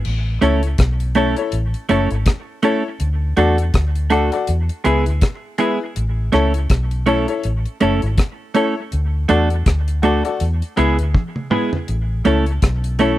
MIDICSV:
0, 0, Header, 1, 6, 480
1, 0, Start_track
1, 0, Key_signature, 3, "major"
1, 0, Tempo, 739827
1, 31, Time_signature, 4, 2, 24, 8
1, 8554, End_track
2, 0, Start_track
2, 0, Title_t, "Upright piano"
2, 0, Program_c, 0, 0
2, 267, Note_on_c, 0, 64, 88
2, 271, Note_on_c, 0, 69, 77
2, 274, Note_on_c, 0, 73, 104
2, 413, Note_off_c, 0, 64, 0
2, 415, Note_off_c, 0, 69, 0
2, 417, Note_off_c, 0, 73, 0
2, 747, Note_on_c, 0, 64, 96
2, 750, Note_on_c, 0, 69, 88
2, 754, Note_on_c, 0, 73, 104
2, 877, Note_off_c, 0, 64, 0
2, 882, Note_off_c, 0, 69, 0
2, 886, Note_off_c, 0, 73, 0
2, 886, Note_on_c, 0, 64, 75
2, 892, Note_on_c, 0, 69, 68
2, 895, Note_on_c, 0, 73, 89
2, 993, Note_off_c, 0, 64, 0
2, 996, Note_off_c, 0, 69, 0
2, 998, Note_off_c, 0, 73, 0
2, 1226, Note_on_c, 0, 64, 83
2, 1230, Note_on_c, 0, 69, 81
2, 1234, Note_on_c, 0, 73, 96
2, 1372, Note_off_c, 0, 64, 0
2, 1374, Note_off_c, 0, 69, 0
2, 1376, Note_off_c, 0, 73, 0
2, 1704, Note_on_c, 0, 64, 95
2, 1709, Note_on_c, 0, 69, 83
2, 1712, Note_on_c, 0, 73, 107
2, 1851, Note_off_c, 0, 64, 0
2, 1853, Note_off_c, 0, 69, 0
2, 1855, Note_off_c, 0, 73, 0
2, 2183, Note_on_c, 0, 66, 92
2, 2187, Note_on_c, 0, 69, 88
2, 2192, Note_on_c, 0, 74, 97
2, 2330, Note_off_c, 0, 66, 0
2, 2332, Note_off_c, 0, 69, 0
2, 2334, Note_off_c, 0, 74, 0
2, 2664, Note_on_c, 0, 66, 94
2, 2668, Note_on_c, 0, 69, 87
2, 2671, Note_on_c, 0, 74, 99
2, 2795, Note_off_c, 0, 66, 0
2, 2799, Note_off_c, 0, 69, 0
2, 2803, Note_off_c, 0, 74, 0
2, 2804, Note_on_c, 0, 66, 79
2, 2809, Note_on_c, 0, 69, 72
2, 2812, Note_on_c, 0, 74, 87
2, 2911, Note_off_c, 0, 66, 0
2, 2913, Note_off_c, 0, 69, 0
2, 2915, Note_off_c, 0, 74, 0
2, 3143, Note_on_c, 0, 64, 93
2, 3146, Note_on_c, 0, 68, 80
2, 3150, Note_on_c, 0, 71, 99
2, 3289, Note_off_c, 0, 64, 0
2, 3291, Note_off_c, 0, 68, 0
2, 3293, Note_off_c, 0, 71, 0
2, 3622, Note_on_c, 0, 64, 100
2, 3626, Note_on_c, 0, 68, 86
2, 3629, Note_on_c, 0, 71, 104
2, 3769, Note_off_c, 0, 64, 0
2, 3771, Note_off_c, 0, 68, 0
2, 3773, Note_off_c, 0, 71, 0
2, 4103, Note_on_c, 0, 64, 85
2, 4106, Note_on_c, 0, 69, 84
2, 4110, Note_on_c, 0, 73, 100
2, 4250, Note_off_c, 0, 64, 0
2, 4251, Note_off_c, 0, 69, 0
2, 4253, Note_off_c, 0, 73, 0
2, 4582, Note_on_c, 0, 64, 92
2, 4585, Note_on_c, 0, 69, 88
2, 4589, Note_on_c, 0, 73, 109
2, 4713, Note_off_c, 0, 64, 0
2, 4717, Note_off_c, 0, 69, 0
2, 4722, Note_off_c, 0, 73, 0
2, 4723, Note_on_c, 0, 64, 81
2, 4727, Note_on_c, 0, 69, 73
2, 4731, Note_on_c, 0, 73, 84
2, 4830, Note_off_c, 0, 64, 0
2, 4832, Note_off_c, 0, 69, 0
2, 4835, Note_off_c, 0, 73, 0
2, 5063, Note_on_c, 0, 64, 87
2, 5066, Note_on_c, 0, 69, 82
2, 5070, Note_on_c, 0, 73, 93
2, 5209, Note_off_c, 0, 64, 0
2, 5211, Note_off_c, 0, 69, 0
2, 5213, Note_off_c, 0, 73, 0
2, 5543, Note_on_c, 0, 64, 88
2, 5546, Note_on_c, 0, 69, 86
2, 5550, Note_on_c, 0, 73, 105
2, 5690, Note_off_c, 0, 64, 0
2, 5691, Note_off_c, 0, 69, 0
2, 5693, Note_off_c, 0, 73, 0
2, 6023, Note_on_c, 0, 66, 86
2, 6028, Note_on_c, 0, 69, 77
2, 6032, Note_on_c, 0, 74, 103
2, 6170, Note_off_c, 0, 66, 0
2, 6172, Note_off_c, 0, 69, 0
2, 6174, Note_off_c, 0, 74, 0
2, 6503, Note_on_c, 0, 66, 92
2, 6507, Note_on_c, 0, 69, 82
2, 6511, Note_on_c, 0, 74, 103
2, 6634, Note_off_c, 0, 66, 0
2, 6638, Note_off_c, 0, 69, 0
2, 6641, Note_off_c, 0, 74, 0
2, 6644, Note_on_c, 0, 66, 79
2, 6648, Note_on_c, 0, 69, 71
2, 6651, Note_on_c, 0, 74, 90
2, 6751, Note_off_c, 0, 66, 0
2, 6753, Note_off_c, 0, 69, 0
2, 6755, Note_off_c, 0, 74, 0
2, 6982, Note_on_c, 0, 64, 89
2, 6985, Note_on_c, 0, 68, 84
2, 6990, Note_on_c, 0, 71, 97
2, 7130, Note_off_c, 0, 64, 0
2, 7132, Note_off_c, 0, 68, 0
2, 7134, Note_off_c, 0, 71, 0
2, 7463, Note_on_c, 0, 64, 91
2, 7466, Note_on_c, 0, 68, 85
2, 7471, Note_on_c, 0, 71, 99
2, 7611, Note_off_c, 0, 64, 0
2, 7612, Note_off_c, 0, 68, 0
2, 7615, Note_off_c, 0, 71, 0
2, 7944, Note_on_c, 0, 64, 83
2, 7948, Note_on_c, 0, 69, 83
2, 7952, Note_on_c, 0, 73, 96
2, 8091, Note_off_c, 0, 64, 0
2, 8093, Note_off_c, 0, 69, 0
2, 8095, Note_off_c, 0, 73, 0
2, 8426, Note_on_c, 0, 64, 95
2, 8429, Note_on_c, 0, 69, 84
2, 8433, Note_on_c, 0, 73, 105
2, 8554, Note_off_c, 0, 64, 0
2, 8554, Note_off_c, 0, 69, 0
2, 8554, Note_off_c, 0, 73, 0
2, 8554, End_track
3, 0, Start_track
3, 0, Title_t, "Clean electric guitar"
3, 0, Program_c, 1, 27
3, 269, Note_on_c, 1, 57, 87
3, 274, Note_on_c, 1, 61, 92
3, 279, Note_on_c, 1, 64, 91
3, 281, Note_on_c, 1, 69, 101
3, 391, Note_off_c, 1, 57, 0
3, 394, Note_off_c, 1, 61, 0
3, 396, Note_off_c, 1, 64, 0
3, 397, Note_off_c, 1, 69, 0
3, 749, Note_on_c, 1, 57, 79
3, 753, Note_on_c, 1, 61, 86
3, 757, Note_on_c, 1, 64, 83
3, 761, Note_on_c, 1, 69, 91
3, 871, Note_off_c, 1, 57, 0
3, 873, Note_off_c, 1, 61, 0
3, 875, Note_off_c, 1, 64, 0
3, 877, Note_off_c, 1, 69, 0
3, 1227, Note_on_c, 1, 57, 89
3, 1231, Note_on_c, 1, 61, 93
3, 1235, Note_on_c, 1, 64, 83
3, 1238, Note_on_c, 1, 69, 93
3, 1350, Note_off_c, 1, 57, 0
3, 1352, Note_off_c, 1, 61, 0
3, 1354, Note_off_c, 1, 64, 0
3, 1355, Note_off_c, 1, 69, 0
3, 1705, Note_on_c, 1, 57, 83
3, 1711, Note_on_c, 1, 61, 84
3, 1714, Note_on_c, 1, 64, 83
3, 1717, Note_on_c, 1, 69, 87
3, 1829, Note_off_c, 1, 57, 0
3, 1831, Note_off_c, 1, 61, 0
3, 1833, Note_off_c, 1, 64, 0
3, 1835, Note_off_c, 1, 69, 0
3, 2186, Note_on_c, 1, 57, 82
3, 2191, Note_on_c, 1, 62, 83
3, 2195, Note_on_c, 1, 66, 93
3, 2199, Note_on_c, 1, 69, 91
3, 2309, Note_off_c, 1, 57, 0
3, 2311, Note_off_c, 1, 62, 0
3, 2313, Note_off_c, 1, 66, 0
3, 2315, Note_off_c, 1, 69, 0
3, 2661, Note_on_c, 1, 57, 86
3, 2667, Note_on_c, 1, 62, 87
3, 2671, Note_on_c, 1, 66, 85
3, 2675, Note_on_c, 1, 69, 99
3, 2786, Note_off_c, 1, 57, 0
3, 2789, Note_off_c, 1, 62, 0
3, 2791, Note_off_c, 1, 66, 0
3, 2793, Note_off_c, 1, 69, 0
3, 3142, Note_on_c, 1, 56, 80
3, 3147, Note_on_c, 1, 59, 78
3, 3151, Note_on_c, 1, 64, 84
3, 3154, Note_on_c, 1, 68, 88
3, 3267, Note_off_c, 1, 56, 0
3, 3269, Note_off_c, 1, 59, 0
3, 3271, Note_off_c, 1, 64, 0
3, 3272, Note_off_c, 1, 68, 0
3, 3624, Note_on_c, 1, 56, 86
3, 3629, Note_on_c, 1, 59, 83
3, 3632, Note_on_c, 1, 64, 95
3, 3636, Note_on_c, 1, 68, 85
3, 3747, Note_off_c, 1, 56, 0
3, 3750, Note_off_c, 1, 59, 0
3, 3751, Note_off_c, 1, 64, 0
3, 3753, Note_off_c, 1, 68, 0
3, 4103, Note_on_c, 1, 57, 86
3, 4108, Note_on_c, 1, 61, 91
3, 4112, Note_on_c, 1, 64, 95
3, 4116, Note_on_c, 1, 69, 97
3, 4226, Note_off_c, 1, 57, 0
3, 4229, Note_off_c, 1, 61, 0
3, 4231, Note_off_c, 1, 64, 0
3, 4233, Note_off_c, 1, 69, 0
3, 4582, Note_on_c, 1, 57, 84
3, 4587, Note_on_c, 1, 61, 93
3, 4592, Note_on_c, 1, 64, 92
3, 4595, Note_on_c, 1, 69, 96
3, 4706, Note_off_c, 1, 57, 0
3, 4709, Note_off_c, 1, 61, 0
3, 4711, Note_off_c, 1, 64, 0
3, 4713, Note_off_c, 1, 69, 0
3, 5066, Note_on_c, 1, 57, 80
3, 5069, Note_on_c, 1, 61, 89
3, 5074, Note_on_c, 1, 64, 98
3, 5079, Note_on_c, 1, 69, 101
3, 5188, Note_off_c, 1, 57, 0
3, 5190, Note_off_c, 1, 61, 0
3, 5192, Note_off_c, 1, 64, 0
3, 5194, Note_off_c, 1, 69, 0
3, 5544, Note_on_c, 1, 57, 79
3, 5550, Note_on_c, 1, 61, 84
3, 5555, Note_on_c, 1, 64, 89
3, 5557, Note_on_c, 1, 69, 90
3, 5667, Note_off_c, 1, 57, 0
3, 5670, Note_off_c, 1, 61, 0
3, 5673, Note_off_c, 1, 64, 0
3, 5674, Note_off_c, 1, 69, 0
3, 6026, Note_on_c, 1, 57, 89
3, 6030, Note_on_c, 1, 62, 92
3, 6033, Note_on_c, 1, 66, 100
3, 6036, Note_on_c, 1, 69, 103
3, 6148, Note_off_c, 1, 57, 0
3, 6150, Note_off_c, 1, 62, 0
3, 6152, Note_off_c, 1, 66, 0
3, 6154, Note_off_c, 1, 69, 0
3, 6509, Note_on_c, 1, 57, 85
3, 6513, Note_on_c, 1, 62, 78
3, 6516, Note_on_c, 1, 66, 84
3, 6521, Note_on_c, 1, 69, 84
3, 6630, Note_off_c, 1, 57, 0
3, 6632, Note_off_c, 1, 62, 0
3, 6634, Note_off_c, 1, 66, 0
3, 6636, Note_off_c, 1, 69, 0
3, 6989, Note_on_c, 1, 56, 93
3, 6994, Note_on_c, 1, 59, 97
3, 6998, Note_on_c, 1, 64, 93
3, 7001, Note_on_c, 1, 68, 103
3, 7110, Note_off_c, 1, 56, 0
3, 7113, Note_off_c, 1, 59, 0
3, 7115, Note_off_c, 1, 64, 0
3, 7116, Note_off_c, 1, 68, 0
3, 7468, Note_on_c, 1, 56, 79
3, 7472, Note_on_c, 1, 59, 91
3, 7477, Note_on_c, 1, 64, 95
3, 7481, Note_on_c, 1, 68, 90
3, 7590, Note_off_c, 1, 56, 0
3, 7592, Note_off_c, 1, 59, 0
3, 7595, Note_off_c, 1, 64, 0
3, 7597, Note_off_c, 1, 68, 0
3, 7948, Note_on_c, 1, 57, 96
3, 7952, Note_on_c, 1, 61, 90
3, 7956, Note_on_c, 1, 64, 102
3, 7960, Note_on_c, 1, 69, 107
3, 8071, Note_off_c, 1, 57, 0
3, 8073, Note_off_c, 1, 61, 0
3, 8074, Note_off_c, 1, 64, 0
3, 8076, Note_off_c, 1, 69, 0
3, 8430, Note_on_c, 1, 57, 88
3, 8434, Note_on_c, 1, 61, 89
3, 8440, Note_on_c, 1, 64, 90
3, 8443, Note_on_c, 1, 69, 93
3, 8552, Note_off_c, 1, 57, 0
3, 8554, Note_off_c, 1, 61, 0
3, 8554, Note_off_c, 1, 64, 0
3, 8554, Note_off_c, 1, 69, 0
3, 8554, End_track
4, 0, Start_track
4, 0, Title_t, "Fingered electric bass"
4, 0, Program_c, 2, 33
4, 38, Note_on_c, 2, 33, 101
4, 257, Note_off_c, 2, 33, 0
4, 274, Note_on_c, 2, 37, 78
4, 495, Note_off_c, 2, 37, 0
4, 515, Note_on_c, 2, 35, 101
4, 867, Note_off_c, 2, 35, 0
4, 992, Note_on_c, 2, 33, 106
4, 1122, Note_off_c, 2, 33, 0
4, 1232, Note_on_c, 2, 30, 85
4, 1361, Note_off_c, 2, 30, 0
4, 1372, Note_on_c, 2, 32, 94
4, 1463, Note_off_c, 2, 32, 0
4, 1950, Note_on_c, 2, 38, 112
4, 2172, Note_off_c, 2, 38, 0
4, 2189, Note_on_c, 2, 40, 90
4, 2411, Note_off_c, 2, 40, 0
4, 2430, Note_on_c, 2, 38, 96
4, 2783, Note_off_c, 2, 38, 0
4, 2910, Note_on_c, 2, 40, 105
4, 3039, Note_off_c, 2, 40, 0
4, 3151, Note_on_c, 2, 37, 90
4, 3280, Note_off_c, 2, 37, 0
4, 3292, Note_on_c, 2, 38, 85
4, 3383, Note_off_c, 2, 38, 0
4, 3872, Note_on_c, 2, 33, 106
4, 4092, Note_off_c, 2, 33, 0
4, 4112, Note_on_c, 2, 37, 83
4, 4332, Note_off_c, 2, 37, 0
4, 4350, Note_on_c, 2, 35, 93
4, 4703, Note_off_c, 2, 35, 0
4, 4834, Note_on_c, 2, 33, 99
4, 4961, Note_off_c, 2, 33, 0
4, 5075, Note_on_c, 2, 30, 88
4, 5202, Note_off_c, 2, 30, 0
4, 5212, Note_on_c, 2, 32, 96
4, 5302, Note_off_c, 2, 32, 0
4, 5795, Note_on_c, 2, 38, 104
4, 6014, Note_off_c, 2, 38, 0
4, 6033, Note_on_c, 2, 40, 82
4, 6253, Note_off_c, 2, 40, 0
4, 6271, Note_on_c, 2, 38, 94
4, 6624, Note_off_c, 2, 38, 0
4, 6754, Note_on_c, 2, 40, 99
4, 6882, Note_off_c, 2, 40, 0
4, 6995, Note_on_c, 2, 37, 88
4, 7123, Note_off_c, 2, 37, 0
4, 7134, Note_on_c, 2, 38, 86
4, 7224, Note_off_c, 2, 38, 0
4, 7714, Note_on_c, 2, 33, 108
4, 7935, Note_off_c, 2, 33, 0
4, 7956, Note_on_c, 2, 37, 84
4, 8176, Note_off_c, 2, 37, 0
4, 8194, Note_on_c, 2, 35, 104
4, 8547, Note_off_c, 2, 35, 0
4, 8554, End_track
5, 0, Start_track
5, 0, Title_t, "Muted clean electric guitar strokes"
5, 2806, Note_on_c, 9, 29, 48
5, 2871, Note_off_c, 9, 29, 0
5, 4725, Note_on_c, 9, 29, 52
5, 4789, Note_off_c, 9, 29, 0
5, 8554, End_track
6, 0, Start_track
6, 0, Title_t, "Drums"
6, 31, Note_on_c, 9, 49, 92
6, 96, Note_off_c, 9, 49, 0
6, 271, Note_on_c, 9, 42, 78
6, 336, Note_off_c, 9, 42, 0
6, 407, Note_on_c, 9, 42, 61
6, 472, Note_off_c, 9, 42, 0
6, 508, Note_on_c, 9, 42, 103
6, 512, Note_on_c, 9, 36, 119
6, 518, Note_on_c, 9, 37, 112
6, 573, Note_off_c, 9, 42, 0
6, 576, Note_off_c, 9, 36, 0
6, 583, Note_off_c, 9, 37, 0
6, 649, Note_on_c, 9, 42, 59
6, 714, Note_off_c, 9, 42, 0
6, 745, Note_on_c, 9, 42, 71
6, 810, Note_off_c, 9, 42, 0
6, 886, Note_on_c, 9, 42, 59
6, 951, Note_off_c, 9, 42, 0
6, 985, Note_on_c, 9, 42, 86
6, 1050, Note_off_c, 9, 42, 0
6, 1129, Note_on_c, 9, 42, 49
6, 1194, Note_off_c, 9, 42, 0
6, 1227, Note_on_c, 9, 42, 77
6, 1292, Note_off_c, 9, 42, 0
6, 1366, Note_on_c, 9, 42, 54
6, 1431, Note_off_c, 9, 42, 0
6, 1464, Note_on_c, 9, 42, 108
6, 1469, Note_on_c, 9, 36, 119
6, 1476, Note_on_c, 9, 37, 110
6, 1529, Note_off_c, 9, 42, 0
6, 1534, Note_off_c, 9, 36, 0
6, 1541, Note_off_c, 9, 37, 0
6, 1704, Note_on_c, 9, 42, 81
6, 1769, Note_off_c, 9, 42, 0
6, 1945, Note_on_c, 9, 42, 89
6, 2010, Note_off_c, 9, 42, 0
6, 2186, Note_on_c, 9, 42, 83
6, 2250, Note_off_c, 9, 42, 0
6, 2324, Note_on_c, 9, 42, 63
6, 2389, Note_off_c, 9, 42, 0
6, 2425, Note_on_c, 9, 42, 98
6, 2428, Note_on_c, 9, 36, 115
6, 2435, Note_on_c, 9, 37, 115
6, 2490, Note_off_c, 9, 42, 0
6, 2492, Note_off_c, 9, 36, 0
6, 2500, Note_off_c, 9, 37, 0
6, 2565, Note_on_c, 9, 42, 56
6, 2630, Note_off_c, 9, 42, 0
6, 2663, Note_on_c, 9, 42, 77
6, 2728, Note_off_c, 9, 42, 0
6, 2803, Note_on_c, 9, 42, 60
6, 2868, Note_off_c, 9, 42, 0
6, 2902, Note_on_c, 9, 42, 93
6, 2967, Note_off_c, 9, 42, 0
6, 3045, Note_on_c, 9, 42, 54
6, 3110, Note_off_c, 9, 42, 0
6, 3145, Note_on_c, 9, 42, 78
6, 3210, Note_off_c, 9, 42, 0
6, 3284, Note_on_c, 9, 42, 55
6, 3349, Note_off_c, 9, 42, 0
6, 3383, Note_on_c, 9, 42, 107
6, 3388, Note_on_c, 9, 36, 123
6, 3395, Note_on_c, 9, 37, 115
6, 3448, Note_off_c, 9, 42, 0
6, 3453, Note_off_c, 9, 36, 0
6, 3460, Note_off_c, 9, 37, 0
6, 3622, Note_on_c, 9, 42, 80
6, 3687, Note_off_c, 9, 42, 0
6, 3867, Note_on_c, 9, 42, 91
6, 3932, Note_off_c, 9, 42, 0
6, 4105, Note_on_c, 9, 42, 77
6, 4114, Note_on_c, 9, 37, 68
6, 4169, Note_off_c, 9, 42, 0
6, 4179, Note_off_c, 9, 37, 0
6, 4244, Note_on_c, 9, 42, 62
6, 4309, Note_off_c, 9, 42, 0
6, 4345, Note_on_c, 9, 42, 105
6, 4347, Note_on_c, 9, 36, 121
6, 4355, Note_on_c, 9, 37, 105
6, 4410, Note_off_c, 9, 42, 0
6, 4412, Note_off_c, 9, 36, 0
6, 4420, Note_off_c, 9, 37, 0
6, 4484, Note_on_c, 9, 42, 56
6, 4549, Note_off_c, 9, 42, 0
6, 4584, Note_on_c, 9, 42, 71
6, 4649, Note_off_c, 9, 42, 0
6, 4724, Note_on_c, 9, 42, 58
6, 4789, Note_off_c, 9, 42, 0
6, 4824, Note_on_c, 9, 42, 86
6, 4889, Note_off_c, 9, 42, 0
6, 4967, Note_on_c, 9, 42, 50
6, 5032, Note_off_c, 9, 42, 0
6, 5064, Note_on_c, 9, 42, 77
6, 5129, Note_off_c, 9, 42, 0
6, 5204, Note_on_c, 9, 42, 55
6, 5269, Note_off_c, 9, 42, 0
6, 5305, Note_on_c, 9, 42, 103
6, 5308, Note_on_c, 9, 36, 119
6, 5316, Note_on_c, 9, 37, 110
6, 5369, Note_off_c, 9, 42, 0
6, 5373, Note_off_c, 9, 36, 0
6, 5381, Note_off_c, 9, 37, 0
6, 5545, Note_on_c, 9, 42, 79
6, 5609, Note_off_c, 9, 42, 0
6, 5788, Note_on_c, 9, 42, 87
6, 5852, Note_off_c, 9, 42, 0
6, 6026, Note_on_c, 9, 42, 84
6, 6091, Note_off_c, 9, 42, 0
6, 6166, Note_on_c, 9, 42, 61
6, 6231, Note_off_c, 9, 42, 0
6, 6268, Note_on_c, 9, 42, 99
6, 6270, Note_on_c, 9, 36, 123
6, 6279, Note_on_c, 9, 37, 105
6, 6333, Note_off_c, 9, 42, 0
6, 6334, Note_off_c, 9, 36, 0
6, 6344, Note_off_c, 9, 37, 0
6, 6409, Note_on_c, 9, 42, 58
6, 6474, Note_off_c, 9, 42, 0
6, 6507, Note_on_c, 9, 42, 77
6, 6572, Note_off_c, 9, 42, 0
6, 6649, Note_on_c, 9, 42, 59
6, 6714, Note_off_c, 9, 42, 0
6, 6748, Note_on_c, 9, 42, 87
6, 6813, Note_off_c, 9, 42, 0
6, 6891, Note_on_c, 9, 42, 50
6, 6956, Note_off_c, 9, 42, 0
6, 6989, Note_on_c, 9, 42, 75
6, 7054, Note_off_c, 9, 42, 0
6, 7128, Note_on_c, 9, 42, 57
6, 7193, Note_off_c, 9, 42, 0
6, 7230, Note_on_c, 9, 48, 65
6, 7231, Note_on_c, 9, 36, 123
6, 7295, Note_off_c, 9, 48, 0
6, 7296, Note_off_c, 9, 36, 0
6, 7369, Note_on_c, 9, 47, 69
6, 7434, Note_off_c, 9, 47, 0
6, 7467, Note_on_c, 9, 45, 85
6, 7532, Note_off_c, 9, 45, 0
6, 7609, Note_on_c, 9, 43, 100
6, 7674, Note_off_c, 9, 43, 0
6, 7708, Note_on_c, 9, 42, 87
6, 7773, Note_off_c, 9, 42, 0
6, 7948, Note_on_c, 9, 42, 77
6, 8013, Note_off_c, 9, 42, 0
6, 8086, Note_on_c, 9, 42, 58
6, 8151, Note_off_c, 9, 42, 0
6, 8189, Note_on_c, 9, 42, 103
6, 8192, Note_on_c, 9, 36, 118
6, 8199, Note_on_c, 9, 37, 109
6, 8254, Note_off_c, 9, 42, 0
6, 8257, Note_off_c, 9, 36, 0
6, 8264, Note_off_c, 9, 37, 0
6, 8330, Note_on_c, 9, 42, 59
6, 8395, Note_off_c, 9, 42, 0
6, 8427, Note_on_c, 9, 42, 75
6, 8492, Note_off_c, 9, 42, 0
6, 8554, End_track
0, 0, End_of_file